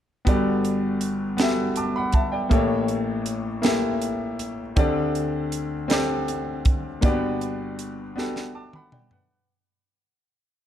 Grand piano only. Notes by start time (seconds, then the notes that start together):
0.25 G1 G2 B3 F#4 G4 A4 D5
1.37 B3 F#4 G4 A4 E5
1.77 A5 D6
1.96 F#5 B5
2.14 E5 A5
2.32 D5 G5
2.49 A1 A2 A#3 E4 G4 A4 C#5
3.62 A#3 E4 G4 A4 E5
4.76 D2 D3 C4 D4 G4 A4 D5
5.88 C4 D4 G4 A4 D5
7.01 G1 G2 A#3 D4 F#4 G4 D5
7.08 B3
8.16 B3 D4 F#4 G4 A4
8.55 A5 D6
8.75 F#5 B5
8.92 D5 G5
9.12 B4 F#5